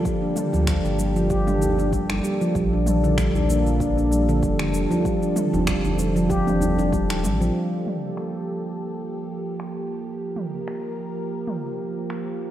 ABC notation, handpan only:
X:1
M:4/4
L:1/16
Q:"Swing 16ths" 1/4=96
K:Gm
V:1 name="Handpan" clef=bass
G, D G, F, G, D, G, F, G D G, D G, G, G, F, | G, D G, D, G, D, B, F, D D G, D, G, D, G, F, | G, D G, F, G, D, G, F, G D G, D G, G, G, F, | z16 |
z16 |]